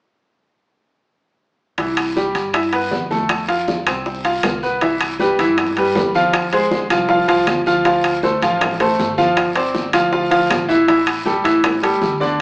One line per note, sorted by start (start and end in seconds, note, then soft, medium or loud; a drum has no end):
1.78 2.31 C2 medium
1.78 2.09 E3 medium
1.78 2.09 E4 medium
1.78 high bongo medium
1.78 high conga soft
1.78 high timbale medium
1.78 long guiro medium
1.97 high bongo soft
1.97 high conga soft
1.97 high timbale medium
1.97 claves medium
2.15 2.47 G3 medium
2.15 2.47 G4 medium
2.15 high bongo medium
2.15 high conga medium
2.15 short guiro medium
2.35 2.88 G2 medium
2.35 high bongo soft
2.35 high conga soft
2.35 high timbale medium
2.35 short guiro medium
2.54 2.69 E4 medium
2.54 2.70 E5 medium
2.54 high bongo medium
2.54 high conga soft
2.54 high timbale medium
2.54 long guiro medium
2.54 claves medium
2.73 3.04 B3 medium
2.73 3.04 B4 medium
2.73 high bongo soft
2.73 high conga soft
2.73 high timbale medium
2.91 3.81 F2 medium
2.91 high bongo soft
2.91 low bongo medium
2.91 high conga medium
2.91 short guiro medium
3.11 3.42 A3 medium
3.11 3.42 A4 medium
3.11 high conga medium
3.11 short guiro medium
3.29 high bongo medium
3.29 high conga soft
3.29 high timbale medium
3.29 long guiro medium
3.29 claves medium
3.48 3.80 F4 medium
3.48 3.80 F5 medium
3.48 high bongo soft
3.48 high conga soft
3.48 high timbale medium
3.68 high bongo medium
3.68 high conga medium
3.68 short guiro medium
3.87 4.40 C2 medium
3.87 4.18 C4 medium
3.87 4.18 C5 medium
3.87 high bongo soft
3.87 high conga soft
3.87 high timbale medium
3.87 short guiro medium
3.87 claves medium
4.06 high bongo medium
4.06 high conga soft
4.06 long guiro medium
4.24 4.56 F4 medium
4.24 4.56 F5 medium
4.24 high bongo soft
4.24 high conga soft
4.24 high timbale medium
4.43 5.33 C2 medium
4.43 high bongo soft
4.43 low bongo medium
4.43 high conga medium
4.43 high timbale medium
4.43 low timbale medium
4.43 short guiro medium
4.43 claves medium
4.63 4.79 B3 medium
4.63 4.79 B4 medium
4.63 high conga soft
4.63 short guiro medium
4.81 5.13 E3 medium
4.81 5.13 E4 medium
4.81 5.13 E5 medium
4.81 high bongo medium
4.81 high conga soft
4.81 high timbale medium
4.81 long guiro medium
5.01 high bongo soft
5.01 high conga soft
5.01 high timbale medium
5.01 claves medium
5.19 5.35 G3 medium
5.19 5.36 G4 medium
5.19 5.36 B4 medium
5.19 high bongo medium
5.19 high conga medium
5.19 short guiro medium
5.39 5.92 G2 loud
5.39 5.70 E3 medium
5.39 5.70 E4 medium
5.39 5.70 E5 medium
5.39 high bongo soft
5.39 high conga soft
5.39 high timbale medium
5.39 short guiro medium
5.58 high bongo medium
5.58 high conga soft
5.58 low conga medium
5.58 high timbale medium
5.58 long guiro medium
5.58 claves medium
5.76 6.08 G3 medium
5.76 6.08 G4 medium
5.76 6.09 B4 medium
5.76 high bongo soft
5.76 high conga soft
5.76 high timbale medium
5.95 6.84 F2 medium
5.95 high bongo soft
5.95 low bongo medium
5.95 high conga medium
5.95 low timbale medium
5.95 short guiro medium
6.15 6.46 F3 medium
6.15 6.46 F4 medium
6.15 6.46 F5 medium
6.15 high conga medium
6.15 short guiro medium
6.33 high bongo medium
6.33 high conga soft
6.33 high timbale medium
6.33 long guiro medium
6.33 claves medium
6.53 6.84 G#3 medium
6.53 6.84 G#4 medium
6.53 6.84 C5 medium
6.53 high bongo soft
6.53 high conga soft
6.53 high timbale medium
6.71 high bongo medium
6.71 high conga medium
6.71 short guiro medium
6.90 7.26 C2 loud
6.90 7.06 F3 medium
6.90 7.06 F4 medium
6.90 7.06 F5 medium
6.90 high bongo soft
6.90 high conga soft
6.90 high timbale medium
6.90 short guiro medium
6.90 claves medium
7.09 7.25 F3 medium
7.09 7.25 F4 medium
7.09 7.25 F5 medium
7.09 high bongo medium
7.09 high conga soft
7.09 long guiro medium
7.28 7.46 C2 medium
7.28 7.59 F3 medium
7.28 7.59 F4 medium
7.28 7.59 F5 medium
7.28 high bongo soft
7.28 high conga soft
7.28 high timbale medium
7.47 8.36 D2 medium
7.47 high bongo soft
7.47 low bongo medium
7.47 high conga medium
7.47 high timbale medium
7.47 short guiro medium
7.47 claves medium
7.66 7.82 F3 medium
7.66 7.82 F4 medium
7.66 7.82 F5 medium
7.66 high conga soft
7.66 short guiro medium
7.85 8.16 F3 medium
7.85 8.17 F4 medium
7.85 8.17 F5 medium
7.85 high bongo medium
7.85 high conga soft
7.85 high timbale medium
7.85 long guiro medium
8.04 high bongo soft
8.04 high conga soft
8.04 high timbale medium
8.04 claves medium
8.23 8.39 A3 medium
8.23 8.39 A4 medium
8.23 8.39 C5 medium
8.23 high bongo medium
8.23 high conga medium
8.23 short guiro medium
8.42 8.95 A1 loud
8.42 8.73 F3 medium
8.42 8.74 F4 medium
8.42 8.74 F5 medium
8.42 high bongo soft
8.42 high conga soft
8.42 high timbale medium
8.42 short guiro medium
8.61 high bongo medium
8.61 high conga soft
8.61 low conga medium
8.61 high timbale medium
8.61 long guiro medium
8.61 claves medium
8.80 9.11 A3 medium
8.80 9.11 A4 medium
8.80 9.11 C5 medium
8.80 high bongo soft
8.80 high conga soft
8.80 high timbale medium
8.99 9.88 G1 loud
8.99 high bongo soft
8.99 low bongo medium
8.99 high conga medium
8.99 short guiro medium
9.18 9.49 F3 medium
9.18 9.49 F4 medium
9.18 9.49 F5 medium
9.18 high conga medium
9.18 short guiro medium
9.37 high bongo medium
9.37 high conga soft
9.37 high timbale medium
9.37 long guiro medium
9.37 claves medium
9.55 9.86 C4 medium
9.55 9.87 C5 medium
9.55 9.87 D5 medium
9.55 high bongo soft
9.55 high conga soft
9.55 high timbale medium
9.75 high bongo medium
9.75 high conga medium
9.75 short guiro medium
9.93 10.47 D2 medium
9.93 10.09 F3 medium
9.93 10.09 F4 medium
9.93 10.09 F5 medium
9.93 high bongo soft
9.93 high conga soft
9.93 high timbale medium
9.93 short guiro medium
9.93 claves medium
10.12 10.28 F3 medium
10.12 10.28 F4 medium
10.12 10.28 F5 medium
10.12 high bongo medium
10.12 high conga soft
10.12 long guiro medium
10.30 10.62 F3 medium
10.30 10.62 F4 medium
10.30 10.62 F5 medium
10.30 high bongo soft
10.30 high conga soft
10.30 high timbale medium
10.50 11.39 A1 medium
10.50 high bongo soft
10.50 low bongo medium
10.50 high conga medium
10.50 high timbale medium
10.50 short guiro medium
10.50 claves medium
10.68 10.84 E3 medium
10.68 10.84 E4 medium
10.68 10.85 E5 medium
10.68 high conga soft
10.68 short guiro medium
10.87 11.19 E3 medium
10.87 11.19 E4 medium
10.87 11.19 E5 medium
10.87 high bongo medium
10.87 high conga soft
10.87 high timbale medium
10.87 long guiro medium
11.07 high bongo soft
11.07 high conga soft
11.07 high timbale medium
11.07 claves medium
11.25 11.41 G3 medium
11.25 11.41 G4 medium
11.25 11.42 A4 medium
11.25 high bongo medium
11.25 high conga medium
11.25 short guiro medium
11.44 11.98 A2 medium
11.44 11.75 E3 medium
11.44 11.76 E4 medium
11.44 11.76 E5 medium
11.44 high bongo soft
11.44 high conga soft
11.44 high timbale medium
11.44 short guiro medium
11.64 high bongo medium
11.64 high conga soft
11.64 low conga medium
11.64 high timbale medium
11.64 long guiro medium
11.64 claves medium
11.82 12.14 G3 medium
11.82 12.14 G4 medium
11.82 12.14 A4 medium
11.82 high bongo soft
11.82 high conga soft
11.82 high timbale medium
12.01 12.41 D2 medium
12.01 high bongo soft
12.01 low bongo medium
12.01 high conga medium
12.01 short guiro medium
12.20 12.41 D3 medium
12.20 12.41 D4 medium
12.20 12.41 D5 medium
12.20 high conga medium
12.20 short guiro medium